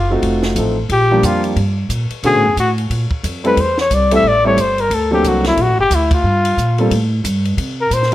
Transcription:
Already playing: F#1 F4
0.10 A3 C4 D#4 F4 F#4
0.22 F1, kick, ride
0.42 snare
0.55 A1 F3 A3 C4 D#4 A4, kick, hi-hat pedal, ride
0.89 A#1 G4, kick, ride
1.11 F3 G3 A#3 D4 G4
1.23 F2 F4, kick, hi-hat pedal, ride
1.44 ride
1.56 G2, kick, ride
1.89 A#2, kick, hi-hat pedal, ride
2.10 muted upright bass stroke, ride
2.23 B2 D3 A3 B3 C#4 F#4 G#4, kick, ride
2.34 A2
2.46 F#2
2.57 A2 F#4, kick, hi-hat pedal, ride
2.78 ride
2.90 A#2, kick, ride
3.11 kick
3.23 F2, kick, hi-hat pedal, ride
3.44 G3 A3 C4 E4 A4 B4, ride
3.57 E2 C5, kick, ride
3.78 C#5, snare
3.90 C2 D5, kick, hi-hat pedal, ride
4.11 G3 A3 C4 E4 A4 E5, ride
4.23 A1, kick
4.28 D5
4.44 G3 A3 C4 E4 A4 C#5
4.57 G1, kick, hi-hat pedal, ride
4.61 C5
4.78 A#4, ride
4.90 D2, kick, ride
4.94 A4
5.11 F#3 A#3 C4 D4 G4 A4
5.24 C2, kick, hi-hat pedal, ride
5.28 F#4
5.44 E4, snare, ride
5.57 A#1, kick, ride
5.62 F#4
5.68 A1
5.79 F#1 G4
5.90 D2, kick, hi-hat pedal, ride
5.95 E4
6.11 F4, kick, ride
6.23 G2
6.45 ride
6.57 A#2, kick, hi-hat pedal
6.78 G3 A#3 C4 F4 A4, ride
6.91 A2, kick, ride
7.24 G2, kick, hi-hat pedal, ride
7.45 ride
7.57 C3, kick, ride
7.81 A#4
7.90 A#2 C5, kick, hi-hat pedal, ride
8.02 snare

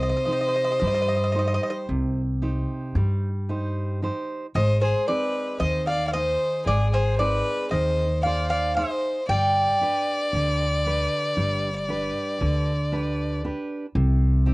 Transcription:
Already playing: C2 C3 C5
0.03 D#5
0.09 D#5
0.16 D#5
0.25 D#4 G4 C5 D#5
0.32 D#5
0.41 D#5
0.48 D#5
0.55 D#5
0.64 D#5
0.72 D#5
0.79 G2 G3 D#5
0.87 D#5
0.94 D#5
1.02 D#5
1.08 D#5
1.16 D#5
1.24 D#5
1.32 D#4 G4 C5 D#5
1.39 D#5
1.47 D#5
1.54 D#5
1.63 D#5
1.70 D#5
1.89 C2 C3
2.42 D#4 G4 C5
2.95 G2 G3
3.49 D#4 G4 C5
4.02 D#4 G4 C5
4.55 G#1 G#3 C5 D#5
4.82 G#4 C5
5.08 C4 D#4 G#4 B4 D5
5.60 D#2 D#3 C5 D#5
5.87 D5 F5
6.07 D5 F5
6.13 D#4 G#4 C5 D#5
6.66 G#1 G#3 G#4 D5
6.92 G#4 C5
7.18 C4 D#4 G#4 B4 D5
7.71 D#2 D#3 C5 D#5
8.23 D#4 G#4 C5 D5 F5
8.50 D5 F5
8.76 D#4 G#4 C5 D#5
9.28 G1 G3 D5 G5
9.81 D4 G4 B4
10.33 D2 D3
10.86 D4 G4 B4
11.37 G1 G3
11.88 D4 G4 B4
12.40 D2 D3
12.92 D4 G4 B4
13.44 D4 G4 B4
13.95 C2 C3
14.46 C4 D#4 G4

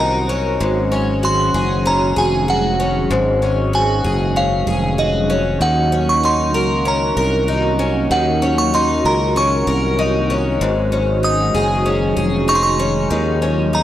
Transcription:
Already playing: C2 D#3 F#3 A#3 C#4 D#4 F#4 A#4 C5
0.00 A#5
0.29 C#4
0.60 G#1 G#2 G#3 C#4
0.92 C#4
1.23 F#4 C6
1.54 F#1 G#4
1.86 C#4 A#5
2.16 F1 G#4 G#5
2.48 F#4 F#5
2.80 C#4
3.11 G#1 G#2 G#4
3.42 C#4
3.73 F#4 G#5
4.04 F#1 G#4
4.36 C#4 F5
4.67 F1 G#4
4.98 F#4 D#5
5.30 C#4
5.60 D#2 D#3 A#3 F#4 F#5
5.92 C#4
6.09 C#6
6.23 D#4 C6
6.54 C#2 A#4
6.85 C#4 A#5
7.17 C2 A#4
7.48 D#4
7.79 C#4
8.11 D#2 D#3 F#5
8.42 C#4
8.58 C#6
8.74 D#4 C6
9.05 C#2 A#4 A#5
9.36 C#4 C#6
9.67 C2 A#4
9.99 D#4
10.30 C#4
10.60 G#1 G#2 D#3 F#3 G#3
10.92 C#4
11.23 D#4 D#6
11.54 F#1 G#4
11.86 C#4
12.17 F1 G#4
12.48 D#4 C#6
12.55 C6
12.63 C#6
12.79 C#4
13.10 D#2 D#3 F3 F#3
13.42 C#4
13.73 D#4 A#5

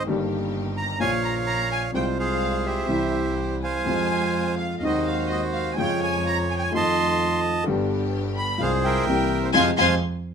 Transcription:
0.05 G1 G2 D#3 G3 A#3 D#4 G4
0.77 A#5
0.98 A#1 A#2 C#3 F3 A#3 C#4 F4 C#5 F5 G#5
1.23 A#5
1.47 A#5
1.72 G#5
1.92 C2 C3 F3 G#3 C4 F4 C5 G5
1.96 F4
2.18 G#4 C5 F5
2.66 G4 C5 E5
2.86 C2 C3 E3 G3 C4 E4
3.62 C5 F5 G#5
3.83 F2 C3 F3 G#3 C4 F4
3.88 F4
4.56 F5
4.76 F5
4.80 D#2 C3 D#3 F#3 G#3 C4 F#4 D#5
4.84 D#4 F#4 C5 D#5
5.03 F5
5.27 D#5
5.31 D#5
5.51 F5
5.72 G#5
5.76 F2 C#3 F3 G#3 C#4 F4 G5
5.80 F4 C#5
6.01 G#5
6.26 A#5
6.49 G#5
6.55 G5 G#5
6.63 G#5
6.70 F2 D#3 F3 A3 C4 D#4 F4 C6
6.75 D#5 A5 C6
7.64 G1 G2 D3 G3 B3 D4 G4
8.36 B5
8.58 C2 C3 F3 G#3 C4 F4 G#4 F5
8.62 G#4 C5
8.83 A#4 E5 G5
9.05 C2 C3 E3 A#3 C4 E4 G4 A#4
9.42 C5
9.54 F2 C3 F3 G#3 C4 F4 C5 F5 G#5 C6
9.77 F2 C3 F3 G#3 C4 F4 C5 F5 G#5 C6
9.81 G#5

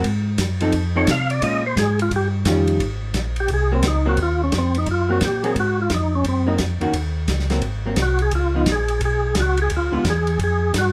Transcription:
0.04 G#2, kick, ride
0.38 F#2, kick, snare, hi-hat pedal, ride
0.60 F3 C4 D#4 A4, ride
0.72 F2, kick, ride
0.96 F3 C4 D#4 A4 C#5
1.07 C3 F5, kick, snare, hi-hat pedal, ride
1.30 D5, ride
1.42 A#2 G#3 C#4 F4 D#5, kick, ride
1.66 C5
1.76 G#2 G#4, kick, snare, hi-hat pedal, ride
1.99 F4, ride
2.11 G2, kick, ride
2.16 G4
2.45 F2 D#3 G3 C#4 F4, kick, snare, hi-hat pedal, ride
2.67 ride
2.79 G#1, kick, ride
3.14 A#1, kick, snare, hi-hat pedal, ride
3.36 ride
3.40 G4
3.48 C2, kick, ride
3.54 G#4
3.72 F#3 A#3 C4
3.83 C#2, kick, snare, hi-hat pedal, ride
3.88 D#4
4.06 F#3 A#3 C4 F#4
4.17 D#2, kick, ride
4.23 F4
4.44 C#4
4.52 F2, kick, snare, hi-hat pedal, ride
4.58 C4
4.75 D#4, ride
4.86 F#2, kick, ride
4.91 F4
5.09 F#3 A#3 C4 F#4
5.21 A#2, kick, snare, hi-hat pedal, ride
5.25 G4
5.43 F#3 A#3 C4 G#4, ride
5.55 G#2, kick, ride
5.60 F#4
5.81 F4
5.90 F2, kick, snare, hi-hat pedal, ride
5.95 D#4
6.15 C#4
6.24 F#2, kick, ride
6.28 C4
6.47 F#3 A#3 C4 D#4
6.58 F2, kick, snare, hi-hat pedal, ride
6.80 F2 D#3 A#3 C#4 F#4, ride
6.93 D#2, kick, ride
7.28 C#2, kick, snare, hi-hat pedal, ride
7.40 snare
7.50 F#3 A#3 C4, snare, ride
7.62 G#1, kick, ride
7.86 F#3 A#3 C4
7.96 C2, kick, snare, hi-hat pedal, ride
8.02 F#4
8.19 G#4, ride
8.31 C#2, kick, ride
8.35 F4
8.55 F3 B3 D#4
8.66 A#1, kick, snare, hi-hat pedal, ride
8.72 G#4
8.88 ride
9.01 B1, kick, ride
9.05 G#4
9.35 C#2, kick, snare, hi-hat pedal, ride
9.40 F#4
9.57 ride
9.62 G#4
9.70 D2, kick, ride
9.77 F4
9.92 D2 D3 G#3 B3 F4
10.04 E2, kick, snare, hi-hat pedal, ride
10.10 G#4
10.27 ride
10.39 F2, kick, ride
10.44 G#4
10.73 G2, kick, snare, hi-hat pedal, ride
10.78 F#4

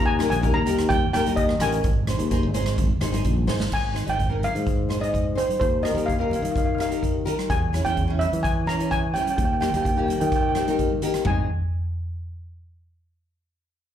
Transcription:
Already playing: D#2
0.06 G#5
0.19 D#4 G4 A#4, cross-stick, closed hi-hat, high conga, low conga
0.30 A#1 G#5, closed hi-hat
0.42 D#4 G4 A#4, kick, closed hi-hat
0.54 D#2 A#5
0.66 D#4 G4 A#4, closed hi-hat, high conga, low conga
0.79 cross-stick, closed hi-hat
0.89 G5, kick, closed hi-hat, high conga, low conga
1.13 D#2 D#4 G4 A#4 G5, cross-stick, closed hi-hat
1.25 D#4 G4 A#4, closed hi-hat, high conga
1.36 D#5, kick, closed hi-hat
1.49 cross-stick, high conga
1.60 A1 D#4 G4 A#4 G#5, cross-stick, closed hi-hat, low conga
1.72 closed hi-hat
1.84 G#1, kick, closed hi-hat
2.07 D#4 G#4 C5, cross-stick, closed hi-hat, high conga, low conga
2.19 D#2, closed hi-hat
2.31 D#4 G#4 C5, kick, closed hi-hat
2.43 G#1
2.54 D#4 G#4 C5, closed hi-hat, high conga, low conga
2.66 cross-stick, closed hi-hat
2.78 kick, closed hi-hat, high conga, low conga
3.01 G#1 D#4 G#4 C5, cross-stick, closed hi-hat
3.12 D#4 G#4 C5, closed hi-hat, high conga
3.24 A#1, kick, closed hi-hat
3.38 high conga
3.47 G#1 D#4 G#4 C5, snare, low conga
3.60 snare
3.72 G#1 G#5, kick, crash
3.93 D#4 G#4 C5, cross-stick, closed hi-hat
4.06 G#1 D#4 G#4 D#5 G5, closed hi-hat, high conga
4.19 kick, closed hi-hat, low conga
4.29 D#4 G#4 A#4
4.43 F5, closed hi-hat, high conga, low conga
4.55 G#2, closed hi-hat, high conga
4.67 kick, closed hi-hat
4.89 D#4 G#4 C5, cross-stick, closed hi-hat
4.99 D#4 G#4 D#5
5.03 closed hi-hat
5.14 kick, closed hi-hat
5.35 D#4 G#4 C5, closed hi-hat, low conga
5.50 closed hi-hat, high conga
5.60 D#2 C5, kick, closed hi-hat
5.82 D#4 G4 A#4 D#5, cross-stick, closed hi-hat
5.94 D#2 D#4 G4 A#4, closed hi-hat, high conga
6.06 F5, kick, closed hi-hat, low conga
6.13 F5
6.18 D#4 G4 A#4 F5
6.30 F5, closed hi-hat, high conga, low conga
6.36 F5
6.42 D#3 F5, closed hi-hat, high conga
6.51 F5
6.56 F5, kick, closed hi-hat
6.65 F5
6.75 D#4 G4 A#4 F5
6.80 F5, cross-stick, closed hi-hat
6.89 D#4 G4 A#4, closed hi-hat
7.03 kick, closed hi-hat
7.25 D#4 G4 A#4, closed hi-hat, low conga
7.39 cross-stick, closed hi-hat, high conga
7.50 E2 G#5, kick, closed hi-hat
7.73 C#4 E4 G#4, cross-stick, closed hi-hat
7.85 E2 C#4 E4 G#4 G5, closed hi-hat
7.97 kick, closed hi-hat, low conga
8.07 C#4 E4 G#4
8.19 E5, closed hi-hat, high conga, low conga
8.33 E3, closed hi-hat, high conga
8.43 G#5, kick, closed hi-hat
8.67 C#4 E4 G#4 A#5, cross-stick, closed hi-hat
8.78 C#4 E4 G#4, closed hi-hat
8.91 G#5, kick, closed hi-hat
9.14 C#4 E4 G#4 G5, closed hi-hat, low conga
9.22 G5
9.27 G5, closed hi-hat, high conga
9.37 D#2 G5, kick, closed hi-hat
9.45 G5
9.53 G5
9.60 A#3 D#4 G4 G5, cross-stick, closed hi-hat
9.70 A#3 D#4 G5
9.74 D#2 G4 G5, closed hi-hat, high conga
9.82 G5, kick, closed hi-hat, low conga
9.89 G5
9.97 A#3 D#4 G4 G5
10.06 G5, closed hi-hat, high conga, low conga
10.13 G5
10.20 D#3 G5, closed hi-hat, high conga
10.27 G5
10.32 G5, kick, closed hi-hat
10.41 G5
10.49 G5
10.55 A#3 D#4 G4 G5, cross-stick, closed hi-hat, low conga
10.67 A#3 D#4 G4, closed hi-hat, high conga
10.79 kick, closed hi-hat, high conga
10.90 high conga
11.02 A#3 D#4 G4, closed hi-hat, low conga
11.14 cross-stick, closed hi-hat, low conga
11.25 G#1 C4 D#4 G#4 G#5, kick, floor tom, high conga

